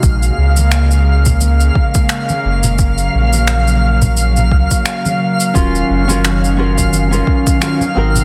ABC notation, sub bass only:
X:1
M:4/4
L:1/8
Q:"Swing 16ths" 1/4=87
K:Ebm
V:1 name="Sub bass" clef=bass
B,,, D,,4 z2 G,,,- | G,,, B,,,4 D,, z2 | E,,, G,,,4 z2 A,,, |]